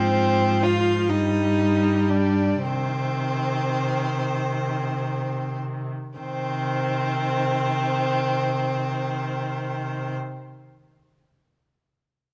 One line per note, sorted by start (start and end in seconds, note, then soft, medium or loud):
0.00 1.10 G#2 soft
0.00 1.10 F3 soft
0.00 0.65 C4 medium
0.00 0.66 C5 medium
0.63 1.11 F4 medium
0.63 1.11 F5 medium
1.09 2.63 G2 soft
1.09 2.65 G3 soft
1.09 2.11 D#4 medium
1.09 2.11 D#5 soft
2.09 2.63 D4 medium
2.09 2.66 D5 soft
2.63 5.87 C3 soft
2.63 5.91 D#3 soft
2.63 5.55 C4 medium
2.63 5.59 C5 soft
6.19 10.15 C3 soft
6.19 10.15 D#3 soft
6.19 10.14 C4 medium
6.19 10.17 C5 soft